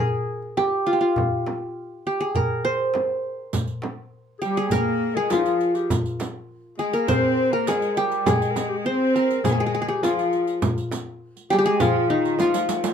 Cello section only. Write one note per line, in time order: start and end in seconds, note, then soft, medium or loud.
4.42 4.70 G3 medium
4.71 5.16 A#3 medium
5.16 5.31 G#3 medium
5.31 5.90 F3 medium
6.78 6.92 G#3 medium
6.93 7.08 A#3 medium
7.07 7.52 C4 medium
7.52 7.67 A#3 medium
7.67 7.97 G#3 medium
7.97 8.26 G3 medium
8.26 8.85 G#3 medium
8.86 9.44 C4 medium
9.45 10.00 G#3 medium
10.03 10.62 F3 medium
11.51 11.58 G3 medium
11.59 11.65 G3 medium
11.66 11.81 G#3 medium
11.81 12.10 F3 medium
12.10 12.39 D#3 medium
12.39 12.84 F3 medium